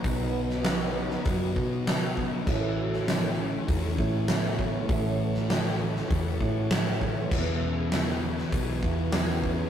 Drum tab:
CC |----------------|x---------------|----------------|x---------------|
HH |o---o---o---o---|----o---o---o---|o---o---o---o---|----o---o---o---|
SD |---oo--o----o---|---oo-------o---|---oo--o----o---|----o--o----o---|
BD |o-------o-o---o-|o-------o-o---o-|o-------o-o---o-|o-------o-o---o-|